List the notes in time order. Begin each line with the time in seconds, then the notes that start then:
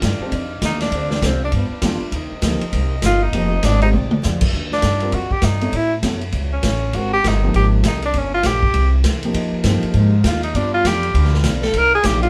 Already playing: D#4 G4 D5 F5
0.02 G2 D#3 G3 D4 F4, kick, snare, hi-hat pedal, ride
0.20 D3 G3 C4 D4, muted upright bass stroke
0.31 F2 D#3 G3 D4 F4, kick, ride
0.61 D#2 D#3 G3 D4 D#4 F4, kick, snare, hi-hat pedal, ride
0.81 D4, snare, ride
0.91 D2 D3 G#3 C4 D4 F4 G#4 C5, kick, ride
1.11 snare
1.21 C2 D3 G#3 C4 F4, kick, snare, hi-hat pedal, ride
1.27 C4
1.45 D4
1.52 G2 F3 B3 D4 G4 B4 F5, kick, ride
1.70 muted upright bass stroke
1.82 F2 G2 F3 G3 B3 D4 F4, kick, snare, hi-hat pedal, ride
2.01 muted upright bass stroke
2.11 D#2 C3 G3 A#3 C4 D#4 G4 A#4 D#5, kick, ride
2.31 muted upright bass stroke
2.42 D2 C3 F3 G3 A#3 D#4 G4, kick, snare, hi-hat pedal, ride
2.61 muted upright bass stroke, ride
2.72 C2 C3 G3 A#3 D#4, kick, ride
3.02 G1 C3 G3 A#3 D#4 F4, kick, snare, hi-hat pedal, ride
3.23 D#4
3.33 F1 F2 D#3 F3 G#3 A#3 C4 D#4 F4 G4 G#4, kick, ride
3.63 G#1 F2 D#3 G#3 C4 D4, kick, snare, hi-hat pedal, ride
3.82 D3 G3 C4 D#4 G4, ride
3.92 A#1 A#2 G#3 D4 G4 D5, mid tom
4.11 mid tom
4.22 F2 A#2 G#3 D4 G4, snare, hi-hat pedal
4.41 kick, crash
4.52 D#2 D#3 G3 D4 F4, kick
4.72 D4, snare
4.82 G2 D#3 G3 D4 F4, kick, snare, hi-hat pedal, ride
5.00 G3 C4 F4 A#4, ride
5.11 F2 D#3 G3 D4 F4 F#4, kick, ride
5.31 G4, muted upright bass stroke, kick
5.42 G2 D#3 G3 D4 D#4 F4, kick, snare, hi-hat pedal, ride
5.61 B3 E4 A4 C#5, ride
5.71 A2 G3 C#4 F#4, kick, ride
5.76 E4
6.02 F#2 A2 G3 B3 C#4 E4 F#4 A4 C#5, kick, snare, hi-hat pedal, ride
6.21 ride
6.32 C#2 A2 G3 C#4 F#4, kick, ride
6.53 C#4
6.62 A1 A2 G3 C#4 F#4, kick, snare, hi-hat pedal, ride
6.93 G#1 G#3 C4 F#4 G4 A#4, kick, ride
7.13 G4
7.24 G1 G#3 C4 G4 A#4, kick, snare, hi-hat pedal, ride
7.28 D#4
7.44 F3 A#3 D#4 G4
7.54 G#1 G#3 C4 G4, kick, ride
7.58 A#4
7.83 C2 G#3 C4 G4 A#4, kick, snare, hi-hat pedal, ride
7.88 D#4
8.02 D4, ride
8.14 G1 G2 F3 A#3 C#4, kick, ride
8.18 C#4
8.34 F4
8.43 A#1 G2 F3 A#3 C#4 G4, kick, snare, hi-hat pedal, ride
8.63 kick
8.73 C2 C3 G#3 A#3 E4, kick, ride
9.04 E2 C3 G#3 A#3 E4, kick, snare, hi-hat pedal, ride
9.23 F3 A#3 D#4 G4, ride
9.33 F2 F3 G#3 D#4 G4 F5, kick, ride
9.52 muted upright bass stroke
9.63 G2 F3 G#3 A#3 D#4 G4, kick, snare, hi-hat pedal, ride
9.83 muted upright bass stroke, ride
9.94 G#2 F3 G#3 D#4 G4, kick, ride
10.24 D#2 F3 G#3 D#4 G4, kick, snare, hi-hat pedal, ride
10.28 F4
10.43 D#4, ride
10.53 G2 F3 G3 B3 D4 F4 B4, kick, ride
10.74 F4
10.84 F2 G2 F3 B3 D4 G4, kick, snare, hi-hat pedal, ride
11.03 ride
11.13 D2 G2 F3 B3 D4, kick, ride
11.24 snare
11.34 snare
11.43 B1 G2 F3 B3 D4, kick, snare, hi-hat pedal, ride
11.62 A4, snare
11.73 C2 C3 F3 A#3 D#4 A#4 D5, kick, ride
11.78 A#4
11.95 G#4
12.03 A#1 C3 F3 A#3 D#4 G4, kick, snare, hi-hat pedal, ride
12.23 F4, ride